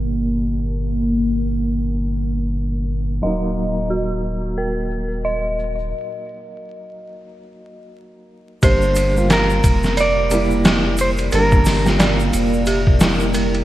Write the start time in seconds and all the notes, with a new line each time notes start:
Already playing: G1 G3 A#3 D4 A#4
3.22 D#1 F#3 A#3 D#4 D#5, shaker
3.56 shaker
3.77 shaker
3.90 F#4, shaker
4.23 shaker
4.44 shaker
4.57 A#4, shaker
4.77 shaker
4.91 shaker
5.11 shaker
5.25 D#5, shaker
5.59 shaker
5.79 shaker
8.62 G1 G3 A#3 D4 G4 A#4 C5, kick, ride, shaker
8.82 shaker
8.95 ride, shaker
9.14 G3 A#3 F4, shaker
9.30 A#4, snare, ride, shaker
9.50 shaker
9.64 F1, kick, ride, shaker
9.83 snare, shaker
9.97 D5, ride, shaker
10.30 G3 A#3 E4, ride, shaker
10.51 shaker
10.65 G4, snare, ride, shaker
10.98 C5, ride, shaker
11.17 ride, shaker
11.31 G1 G3 A#3 D4 A#4, ride, shaker
11.52 kick, shaker
11.65 snare, open hi-hat, shaker
11.84 G3 A#3 F4, snare, shaker
11.99 D5, snare, ride, shaker
12.20 shaker
12.33 F1, ride, shaker
12.53 shaker
12.66 G4, ride, shaker
12.87 kick
12.99 G3 A#3 E4, snare, ride, shaker
13.20 shaker
13.34 A#4, ride, shaker
13.55 ride